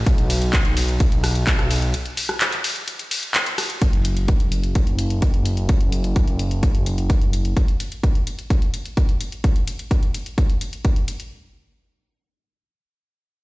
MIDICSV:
0, 0, Header, 1, 3, 480
1, 0, Start_track
1, 0, Tempo, 468750
1, 67, Time_signature, 4, 2, 24, 8
1, 13762, End_track
2, 0, Start_track
2, 0, Title_t, "Analog synth bass"
2, 0, Program_c, 0, 38
2, 66, Note_on_c, 0, 35, 90
2, 1986, Note_off_c, 0, 35, 0
2, 3908, Note_on_c, 0, 30, 85
2, 7723, Note_off_c, 0, 30, 0
2, 13762, End_track
3, 0, Start_track
3, 0, Title_t, "Drums"
3, 66, Note_on_c, 9, 36, 115
3, 66, Note_on_c, 9, 42, 70
3, 66, Note_on_c, 9, 51, 62
3, 168, Note_off_c, 9, 42, 0
3, 168, Note_off_c, 9, 51, 0
3, 169, Note_off_c, 9, 36, 0
3, 186, Note_on_c, 9, 42, 42
3, 289, Note_off_c, 9, 42, 0
3, 306, Note_on_c, 9, 46, 102
3, 306, Note_on_c, 9, 51, 88
3, 408, Note_off_c, 9, 46, 0
3, 408, Note_off_c, 9, 51, 0
3, 427, Note_on_c, 9, 42, 42
3, 529, Note_off_c, 9, 42, 0
3, 545, Note_on_c, 9, 39, 120
3, 546, Note_on_c, 9, 42, 71
3, 547, Note_on_c, 9, 36, 118
3, 647, Note_off_c, 9, 39, 0
3, 649, Note_off_c, 9, 36, 0
3, 649, Note_off_c, 9, 42, 0
3, 666, Note_on_c, 9, 42, 41
3, 768, Note_off_c, 9, 42, 0
3, 786, Note_on_c, 9, 46, 101
3, 786, Note_on_c, 9, 51, 84
3, 888, Note_off_c, 9, 46, 0
3, 888, Note_off_c, 9, 51, 0
3, 906, Note_on_c, 9, 42, 40
3, 1008, Note_off_c, 9, 42, 0
3, 1026, Note_on_c, 9, 42, 73
3, 1026, Note_on_c, 9, 51, 64
3, 1027, Note_on_c, 9, 36, 113
3, 1128, Note_off_c, 9, 42, 0
3, 1128, Note_off_c, 9, 51, 0
3, 1129, Note_off_c, 9, 36, 0
3, 1146, Note_on_c, 9, 42, 43
3, 1249, Note_off_c, 9, 42, 0
3, 1266, Note_on_c, 9, 37, 65
3, 1266, Note_on_c, 9, 46, 99
3, 1266, Note_on_c, 9, 51, 80
3, 1369, Note_off_c, 9, 37, 0
3, 1369, Note_off_c, 9, 46, 0
3, 1369, Note_off_c, 9, 51, 0
3, 1387, Note_on_c, 9, 42, 44
3, 1489, Note_off_c, 9, 42, 0
3, 1506, Note_on_c, 9, 39, 120
3, 1507, Note_on_c, 9, 36, 118
3, 1507, Note_on_c, 9, 42, 72
3, 1507, Note_on_c, 9, 51, 61
3, 1608, Note_off_c, 9, 39, 0
3, 1609, Note_off_c, 9, 36, 0
3, 1610, Note_off_c, 9, 42, 0
3, 1610, Note_off_c, 9, 51, 0
3, 1627, Note_on_c, 9, 37, 70
3, 1627, Note_on_c, 9, 42, 41
3, 1729, Note_off_c, 9, 37, 0
3, 1729, Note_off_c, 9, 42, 0
3, 1747, Note_on_c, 9, 46, 102
3, 1747, Note_on_c, 9, 51, 85
3, 1849, Note_off_c, 9, 46, 0
3, 1849, Note_off_c, 9, 51, 0
3, 1866, Note_on_c, 9, 42, 40
3, 1969, Note_off_c, 9, 42, 0
3, 1986, Note_on_c, 9, 42, 73
3, 1986, Note_on_c, 9, 51, 62
3, 2088, Note_off_c, 9, 42, 0
3, 2088, Note_off_c, 9, 51, 0
3, 2105, Note_on_c, 9, 42, 42
3, 2208, Note_off_c, 9, 42, 0
3, 2225, Note_on_c, 9, 46, 105
3, 2225, Note_on_c, 9, 51, 84
3, 2327, Note_off_c, 9, 46, 0
3, 2327, Note_off_c, 9, 51, 0
3, 2346, Note_on_c, 9, 37, 81
3, 2346, Note_on_c, 9, 42, 42
3, 2448, Note_off_c, 9, 37, 0
3, 2448, Note_off_c, 9, 42, 0
3, 2464, Note_on_c, 9, 39, 122
3, 2465, Note_on_c, 9, 42, 72
3, 2465, Note_on_c, 9, 51, 60
3, 2566, Note_off_c, 9, 39, 0
3, 2568, Note_off_c, 9, 42, 0
3, 2568, Note_off_c, 9, 51, 0
3, 2584, Note_on_c, 9, 39, 38
3, 2585, Note_on_c, 9, 42, 43
3, 2686, Note_off_c, 9, 39, 0
3, 2687, Note_off_c, 9, 42, 0
3, 2706, Note_on_c, 9, 46, 105
3, 2706, Note_on_c, 9, 51, 85
3, 2808, Note_off_c, 9, 46, 0
3, 2808, Note_off_c, 9, 51, 0
3, 2826, Note_on_c, 9, 42, 42
3, 2928, Note_off_c, 9, 42, 0
3, 2945, Note_on_c, 9, 42, 72
3, 2945, Note_on_c, 9, 51, 64
3, 3048, Note_off_c, 9, 42, 0
3, 3048, Note_off_c, 9, 51, 0
3, 3066, Note_on_c, 9, 42, 44
3, 3168, Note_off_c, 9, 42, 0
3, 3187, Note_on_c, 9, 46, 102
3, 3187, Note_on_c, 9, 51, 83
3, 3289, Note_off_c, 9, 46, 0
3, 3289, Note_off_c, 9, 51, 0
3, 3306, Note_on_c, 9, 42, 43
3, 3409, Note_off_c, 9, 42, 0
3, 3425, Note_on_c, 9, 39, 126
3, 3426, Note_on_c, 9, 42, 74
3, 3426, Note_on_c, 9, 51, 61
3, 3527, Note_off_c, 9, 39, 0
3, 3528, Note_off_c, 9, 42, 0
3, 3528, Note_off_c, 9, 51, 0
3, 3547, Note_on_c, 9, 42, 43
3, 3649, Note_off_c, 9, 42, 0
3, 3667, Note_on_c, 9, 37, 61
3, 3667, Note_on_c, 9, 46, 105
3, 3667, Note_on_c, 9, 51, 83
3, 3770, Note_off_c, 9, 37, 0
3, 3770, Note_off_c, 9, 46, 0
3, 3770, Note_off_c, 9, 51, 0
3, 3787, Note_on_c, 9, 42, 41
3, 3889, Note_off_c, 9, 42, 0
3, 3907, Note_on_c, 9, 42, 67
3, 3908, Note_on_c, 9, 36, 113
3, 4009, Note_off_c, 9, 42, 0
3, 4010, Note_off_c, 9, 36, 0
3, 4026, Note_on_c, 9, 42, 39
3, 4129, Note_off_c, 9, 42, 0
3, 4146, Note_on_c, 9, 42, 90
3, 4248, Note_off_c, 9, 42, 0
3, 4266, Note_on_c, 9, 42, 39
3, 4369, Note_off_c, 9, 42, 0
3, 4385, Note_on_c, 9, 42, 64
3, 4388, Note_on_c, 9, 36, 114
3, 4488, Note_off_c, 9, 42, 0
3, 4490, Note_off_c, 9, 36, 0
3, 4506, Note_on_c, 9, 42, 40
3, 4608, Note_off_c, 9, 42, 0
3, 4626, Note_on_c, 9, 42, 92
3, 4729, Note_off_c, 9, 42, 0
3, 4746, Note_on_c, 9, 42, 39
3, 4849, Note_off_c, 9, 42, 0
3, 4867, Note_on_c, 9, 42, 68
3, 4868, Note_on_c, 9, 36, 111
3, 4969, Note_off_c, 9, 42, 0
3, 4970, Note_off_c, 9, 36, 0
3, 4986, Note_on_c, 9, 42, 39
3, 5089, Note_off_c, 9, 42, 0
3, 5106, Note_on_c, 9, 42, 91
3, 5208, Note_off_c, 9, 42, 0
3, 5226, Note_on_c, 9, 42, 39
3, 5329, Note_off_c, 9, 42, 0
3, 5346, Note_on_c, 9, 42, 66
3, 5348, Note_on_c, 9, 36, 113
3, 5448, Note_off_c, 9, 42, 0
3, 5450, Note_off_c, 9, 36, 0
3, 5466, Note_on_c, 9, 42, 38
3, 5569, Note_off_c, 9, 42, 0
3, 5586, Note_on_c, 9, 42, 90
3, 5688, Note_off_c, 9, 42, 0
3, 5705, Note_on_c, 9, 42, 36
3, 5808, Note_off_c, 9, 42, 0
3, 5825, Note_on_c, 9, 42, 64
3, 5828, Note_on_c, 9, 36, 118
3, 5928, Note_off_c, 9, 42, 0
3, 5930, Note_off_c, 9, 36, 0
3, 5945, Note_on_c, 9, 42, 37
3, 6048, Note_off_c, 9, 42, 0
3, 6066, Note_on_c, 9, 42, 89
3, 6169, Note_off_c, 9, 42, 0
3, 6186, Note_on_c, 9, 42, 38
3, 6289, Note_off_c, 9, 42, 0
3, 6307, Note_on_c, 9, 42, 63
3, 6308, Note_on_c, 9, 36, 114
3, 6410, Note_off_c, 9, 36, 0
3, 6410, Note_off_c, 9, 42, 0
3, 6426, Note_on_c, 9, 42, 38
3, 6528, Note_off_c, 9, 42, 0
3, 6547, Note_on_c, 9, 42, 88
3, 6650, Note_off_c, 9, 42, 0
3, 6668, Note_on_c, 9, 42, 36
3, 6770, Note_off_c, 9, 42, 0
3, 6788, Note_on_c, 9, 36, 113
3, 6788, Note_on_c, 9, 42, 64
3, 6890, Note_off_c, 9, 36, 0
3, 6890, Note_off_c, 9, 42, 0
3, 6909, Note_on_c, 9, 42, 38
3, 7011, Note_off_c, 9, 42, 0
3, 7028, Note_on_c, 9, 42, 84
3, 7131, Note_off_c, 9, 42, 0
3, 7148, Note_on_c, 9, 42, 38
3, 7250, Note_off_c, 9, 42, 0
3, 7268, Note_on_c, 9, 36, 118
3, 7268, Note_on_c, 9, 42, 60
3, 7370, Note_off_c, 9, 36, 0
3, 7370, Note_off_c, 9, 42, 0
3, 7389, Note_on_c, 9, 42, 38
3, 7491, Note_off_c, 9, 42, 0
3, 7509, Note_on_c, 9, 42, 84
3, 7611, Note_off_c, 9, 42, 0
3, 7629, Note_on_c, 9, 42, 35
3, 7731, Note_off_c, 9, 42, 0
3, 7748, Note_on_c, 9, 36, 117
3, 7749, Note_on_c, 9, 42, 60
3, 7850, Note_off_c, 9, 36, 0
3, 7851, Note_off_c, 9, 42, 0
3, 7868, Note_on_c, 9, 42, 35
3, 7971, Note_off_c, 9, 42, 0
3, 7988, Note_on_c, 9, 42, 84
3, 8090, Note_off_c, 9, 42, 0
3, 8108, Note_on_c, 9, 42, 36
3, 8211, Note_off_c, 9, 42, 0
3, 8227, Note_on_c, 9, 36, 118
3, 8229, Note_on_c, 9, 42, 59
3, 8330, Note_off_c, 9, 36, 0
3, 8331, Note_off_c, 9, 42, 0
3, 8349, Note_on_c, 9, 42, 36
3, 8451, Note_off_c, 9, 42, 0
3, 8468, Note_on_c, 9, 42, 81
3, 8571, Note_off_c, 9, 42, 0
3, 8588, Note_on_c, 9, 42, 35
3, 8690, Note_off_c, 9, 42, 0
3, 8707, Note_on_c, 9, 36, 111
3, 8708, Note_on_c, 9, 42, 61
3, 8810, Note_off_c, 9, 36, 0
3, 8810, Note_off_c, 9, 42, 0
3, 8827, Note_on_c, 9, 42, 36
3, 8930, Note_off_c, 9, 42, 0
3, 8947, Note_on_c, 9, 42, 81
3, 9049, Note_off_c, 9, 42, 0
3, 9068, Note_on_c, 9, 42, 36
3, 9170, Note_off_c, 9, 42, 0
3, 9187, Note_on_c, 9, 36, 118
3, 9187, Note_on_c, 9, 42, 59
3, 9289, Note_off_c, 9, 42, 0
3, 9290, Note_off_c, 9, 36, 0
3, 9307, Note_on_c, 9, 42, 36
3, 9409, Note_off_c, 9, 42, 0
3, 9427, Note_on_c, 9, 42, 82
3, 9529, Note_off_c, 9, 42, 0
3, 9547, Note_on_c, 9, 42, 33
3, 9649, Note_off_c, 9, 42, 0
3, 9667, Note_on_c, 9, 36, 113
3, 9667, Note_on_c, 9, 42, 57
3, 9769, Note_off_c, 9, 42, 0
3, 9770, Note_off_c, 9, 36, 0
3, 9787, Note_on_c, 9, 42, 35
3, 9890, Note_off_c, 9, 42, 0
3, 9907, Note_on_c, 9, 42, 82
3, 10009, Note_off_c, 9, 42, 0
3, 10028, Note_on_c, 9, 42, 34
3, 10130, Note_off_c, 9, 42, 0
3, 10147, Note_on_c, 9, 36, 113
3, 10147, Note_on_c, 9, 42, 57
3, 10250, Note_off_c, 9, 36, 0
3, 10250, Note_off_c, 9, 42, 0
3, 10267, Note_on_c, 9, 42, 35
3, 10370, Note_off_c, 9, 42, 0
3, 10388, Note_on_c, 9, 42, 79
3, 10490, Note_off_c, 9, 42, 0
3, 10508, Note_on_c, 9, 42, 34
3, 10610, Note_off_c, 9, 42, 0
3, 10627, Note_on_c, 9, 36, 110
3, 10627, Note_on_c, 9, 42, 59
3, 10729, Note_off_c, 9, 36, 0
3, 10730, Note_off_c, 9, 42, 0
3, 10748, Note_on_c, 9, 42, 36
3, 10850, Note_off_c, 9, 42, 0
3, 10866, Note_on_c, 9, 42, 78
3, 10969, Note_off_c, 9, 42, 0
3, 10987, Note_on_c, 9, 42, 34
3, 11089, Note_off_c, 9, 42, 0
3, 11107, Note_on_c, 9, 36, 111
3, 11107, Note_on_c, 9, 42, 55
3, 11209, Note_off_c, 9, 36, 0
3, 11209, Note_off_c, 9, 42, 0
3, 11226, Note_on_c, 9, 42, 34
3, 11328, Note_off_c, 9, 42, 0
3, 11346, Note_on_c, 9, 42, 79
3, 11448, Note_off_c, 9, 42, 0
3, 11466, Note_on_c, 9, 42, 33
3, 11569, Note_off_c, 9, 42, 0
3, 13762, End_track
0, 0, End_of_file